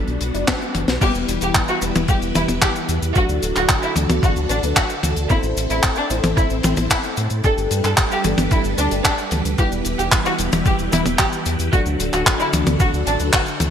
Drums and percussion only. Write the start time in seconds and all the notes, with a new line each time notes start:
0.08 closed hi-hat
0.21 closed hi-hat
0.35 closed hi-hat
0.47 kick, snare, clap, closed hi-hat
0.62 closed hi-hat
0.75 closed hi-hat, high tom
0.88 snare, closed hi-hat
1.01 kick, closed hi-hat, crash, cabasa
1.15 closed hi-hat, cabasa
1.28 closed hi-hat, cabasa
1.41 closed hi-hat, cabasa
1.54 kick, clap, closed hi-hat, cabasa
1.68 closed hi-hat, cabasa
1.82 closed hi-hat, cabasa
1.95 closed hi-hat, high tom, cabasa
2.08 kick, closed hi-hat, cabasa
2.22 closed hi-hat, cabasa
2.35 closed hi-hat, high tom, cabasa
2.48 closed hi-hat, high tom, cabasa
2.62 kick, clap, closed hi-hat, cabasa
2.76 closed hi-hat, cabasa
2.89 closed hi-hat, cabasa
3.02 closed hi-hat, cabasa
3.15 kick, closed hi-hat, cabasa
3.29 closed hi-hat, cabasa
3.43 closed hi-hat, cabasa
3.56 clap, closed hi-hat, cabasa
3.69 kick, clap, closed hi-hat, cabasa
3.83 closed hi-hat, cabasa
3.96 closed hi-hat, high tom, cabasa
4.10 closed hi-hat, high tom, cabasa
4.23 kick, closed hi-hat, cabasa
4.36 closed hi-hat, cabasa
4.49 closed hi-hat, cabasa
4.63 closed hi-hat, cabasa
4.76 kick, clap, closed hi-hat, cabasa
4.90 closed hi-hat, cabasa
5.03 closed hi-hat, high tom, cabasa
5.16 closed hi-hat, cabasa
5.30 kick, closed hi-hat, cabasa
5.43 closed hi-hat, cabasa
5.57 closed hi-hat, cabasa
5.70 closed hi-hat, cabasa
5.83 kick, clap, closed hi-hat, cabasa
5.95 closed hi-hat, cabasa
6.10 closed hi-hat, cabasa
6.24 closed hi-hat, high tom, cabasa
6.37 kick, closed hi-hat, cabasa
6.50 closed hi-hat, cabasa
6.63 closed hi-hat, high tom, cabasa
6.77 closed hi-hat, high tom, cabasa
6.90 kick, clap, closed hi-hat, cabasa
7.04 closed hi-hat, cabasa
7.17 closed hi-hat, cabasa
7.30 closed hi-hat, cabasa
7.44 kick, closed hi-hat, cabasa
7.58 closed hi-hat, cabasa
7.71 closed hi-hat, cabasa
7.84 clap, closed hi-hat, cabasa
7.97 kick, clap, closed hi-hat, cabasa
8.12 closed hi-hat, cabasa
8.24 closed hi-hat, high tom, cabasa
8.38 closed hi-hat, high tom, cabasa
8.51 kick, closed hi-hat, cabasa
8.64 closed hi-hat, cabasa
8.78 closed hi-hat, cabasa
8.91 closed hi-hat, cabasa
9.04 kick, clap, closed hi-hat, cabasa
9.18 closed hi-hat, cabasa
9.31 closed hi-hat, high tom, cabasa
9.45 closed hi-hat, cabasa
9.58 kick, closed hi-hat, cabasa
9.72 closed hi-hat, cabasa
9.85 closed hi-hat, cabasa
9.99 closed hi-hat, cabasa
10.12 kick, clap, closed hi-hat, cabasa
10.25 closed hi-hat, cabasa
10.38 closed hi-hat, cabasa
10.52 closed hi-hat, high tom, cabasa
10.65 kick, closed hi-hat, cabasa
10.79 closed hi-hat, cabasa
10.92 closed hi-hat, high tom, cabasa
11.06 closed hi-hat, high tom, cabasa
11.19 kick, clap, closed hi-hat, cabasa
11.32 closed hi-hat, cabasa
11.46 closed hi-hat, cabasa
11.59 closed hi-hat, cabasa
11.73 kick, closed hi-hat, cabasa
11.86 closed hi-hat, cabasa
12.00 closed hi-hat, cabasa
12.13 clap, closed hi-hat, cabasa
12.26 kick, clap, closed hi-hat, cabasa
12.40 closed hi-hat, cabasa
12.53 closed hi-hat, high tom, cabasa
12.66 closed hi-hat, high tom, cabasa
12.80 kick, closed hi-hat, cabasa
12.94 closed hi-hat, cabasa
13.07 closed hi-hat, cabasa
13.20 closed hi-hat, cabasa
13.33 kick, clap, closed hi-hat, cabasa
13.46 closed hi-hat, cabasa
13.60 closed hi-hat, high tom, cabasa